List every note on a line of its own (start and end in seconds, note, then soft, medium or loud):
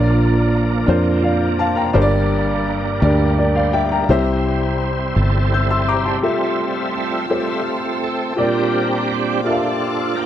0.00 0.84 A#1 loud
0.00 0.84 A#2 medium
0.00 1.91 F3 medium
0.00 1.91 A#3 medium
0.00 0.48 D4 medium
0.00 1.91 D4 medium
0.00 0.48 F4 medium
0.00 0.49 A#4 medium
0.00 1.91 A#4 medium
0.00 0.52 D5 medium
0.86 1.91 F2 medium
0.86 1.54 D4 medium
0.86 1.55 F4 medium
0.86 1.55 A#4 medium
0.86 1.56 C5 medium
1.23 1.57 D5 medium
1.23 1.57 F5 medium
1.59 1.77 F5 medium
1.59 1.76 A5 medium
1.76 2.11 G5 medium
1.76 2.10 A#5 medium
1.93 2.98 G1 medium
1.93 2.97 G2 medium
1.93 4.05 G3 medium
1.93 4.05 A#3 medium
1.93 2.62 D4 medium
1.93 4.04 D4 medium
1.93 2.62 G4 medium
1.93 2.62 A#4 medium
1.93 3.34 A#4 medium
1.93 2.02 C5 medium
2.02 2.66 D5 loud
3.01 4.05 D2 medium
3.01 3.69 D4 medium
3.01 3.69 G4 medium
3.01 3.37 A#4 medium
3.01 3.37 D5 medium
3.38 3.55 A#4 soft
3.38 3.55 D5 medium
3.55 3.72 C5 medium
3.55 3.73 D5 soft
3.55 3.72 F5 medium
3.73 3.90 D5 medium
3.73 3.90 E5 medium
3.73 3.90 G5 medium
3.92 4.25 A#4 medium
3.92 4.25 G5 soft
3.92 4.25 A#5 medium
4.09 5.12 C2 medium
4.09 5.13 C3 medium
4.09 6.19 G3 medium
4.09 5.14 C4 medium
4.09 5.14 E4 medium
4.09 4.77 E4 medium
4.09 4.77 G4 medium
4.09 6.20 C5 medium
4.09 4.77 C5 medium
4.09 4.78 E5 medium
5.15 6.19 G1 medium
5.15 6.18 C4 medium
5.15 6.19 E4 medium
5.15 5.90 A4 medium
5.54 5.69 E6 soft
5.54 5.70 G6 medium
5.70 5.87 C6 soft
5.70 5.87 E6 medium
5.88 6.21 G4 medium
5.88 6.05 A#5 medium
5.88 6.05 D6 medium
6.05 6.39 A5 soft
6.05 6.39 C6 medium
6.22 7.26 G3 soft
6.22 7.26 A3 soft
6.22 7.26 C4 soft
6.22 6.90 F4 soft
6.22 7.31 F4 medium
6.22 6.90 G4 soft
6.22 6.91 A4 soft
6.22 10.26 C5 soft
6.22 7.26 E5 soft
6.22 6.91 E5 medium
6.22 10.26 G5 soft
6.22 8.36 A5 soft
6.22 8.35 E6 medium
7.30 7.62 G3 soft
7.30 8.34 A3 soft
7.30 8.34 C4 soft
7.30 7.97 F4 soft
7.30 7.98 F4 medium
7.30 7.97 G4 soft
7.30 7.98 A4 soft
7.30 7.98 C5 soft
7.30 7.63 E5 soft
8.04 8.36 A4 medium
8.36 9.40 A#2 soft
8.36 9.41 G3 soft
8.36 9.41 C4 soft
8.36 9.41 D4 medium
8.36 9.04 F4 medium
8.36 9.04 G4 medium
8.36 9.41 G4 medium
8.36 9.05 A#4 medium
8.36 9.15 A#4 medium
8.36 9.05 D5 medium
8.36 10.26 F5 medium
8.36 10.26 D6 medium
9.44 10.15 D4 medium
9.44 10.12 F4 soft
9.44 10.26 F4 medium
9.44 10.12 G4 soft
9.44 10.19 A4 medium
9.44 10.12 A#4 soft
9.44 9.52 E5 soft
9.52 10.16 F5 medium
10.16 10.26 A#3 medium
10.16 10.26 D4 medium
10.16 10.26 G4 medium